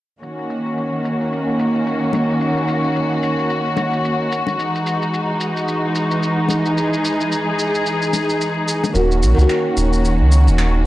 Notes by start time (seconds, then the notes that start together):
0.22 D#3 A#3 C#4 F#4, shaker
0.39 shaker
0.50 shaker
0.66 shaker
0.78 shaker
1.05 shaker
1.21 shaker
1.33 shaker
1.59 shaker
1.75 shaker
1.87 shaker
2.13 high bongo, shaker
2.30 shaker
2.41 shaker
2.57 shaker
2.68 shaker
2.84 shaker
2.96 shaker
3.23 shaker
3.39 shaker
3.50 shaker
3.77 high bongo, shaker
3.93 shaker
4.05 shaker
4.32 shaker
4.47 high bongo, shaker
4.58 E3 G#3 D#4, shaker
4.75 shaker
4.87 shaker
5.02 shaker
5.14 shaker
5.41 shaker
5.57 shaker
5.68 shaker
5.95 shaker
6.11 shaker
6.23 shaker
6.49 high bongo, shaker
6.66 shaker
6.77 G#4, shaker
6.93 shaker
7.05 shaker
7.21 shaker
7.32 shaker
7.59 shaker
7.75 shaker
7.86 shaker
8.02 shaker
8.13 high bongo, shaker
8.30 shaker
8.41 shaker
8.68 shaker
8.84 high bongo, shaker
8.93 D#1 D#3 A#3 C#4 F#4, shaker
9.12 shaker
9.22 A#1, shaker
9.34 C#2 D#3 A#3
9.39 C#4 F#4, shaker
9.49 finger snap, shaker
9.77 D#1, shaker
9.93 shaker
10.05 shaker
10.20 C#2
10.32 shaker
10.47 D#1, shaker
10.58 finger snap, shaker